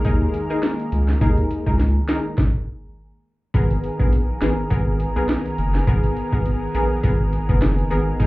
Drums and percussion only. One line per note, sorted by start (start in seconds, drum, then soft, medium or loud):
0.05 kick medium
0.05 closed hi-hat medium
0.34 closed hi-hat medium
0.63 snare loud
0.63 closed hi-hat medium
0.80 closed hi-hat medium
0.92 closed hi-hat medium
1.08 snare medium
1.21 kick loud
1.21 closed hi-hat medium
1.38 closed hi-hat medium
1.51 closed hi-hat medium
1.67 kick medium
1.79 snare medium
1.79 closed hi-hat medium
2.09 snare loud
2.09 closed hi-hat medium
2.38 kick loud
2.38 snare medium
3.54 kick loud
3.54 closed hi-hat medium
3.70 closed hi-hat medium
3.84 closed hi-hat medium
4.00 kick medium
4.13 closed hi-hat medium
4.42 snare loud
4.42 closed hi-hat medium
4.71 kick loud
4.71 closed hi-hat medium
5.00 closed hi-hat medium
5.29 snare loud
5.29 closed hi-hat medium
5.46 closed hi-hat medium
5.58 closed hi-hat medium
5.75 snare medium
5.87 kick loud
5.87 closed hi-hat medium
6.03 closed hi-hat medium
6.17 closed hi-hat medium
6.33 kick medium
6.46 closed hi-hat medium
6.75 closed hi-hat medium
7.04 kick loud
7.04 closed hi-hat medium
7.33 closed hi-hat medium
7.49 kick loud
7.62 snare loud
7.62 closed hi-hat medium
7.78 closed hi-hat medium
7.91 closed hi-hat medium
8.20 kick loud
8.20 closed hi-hat medium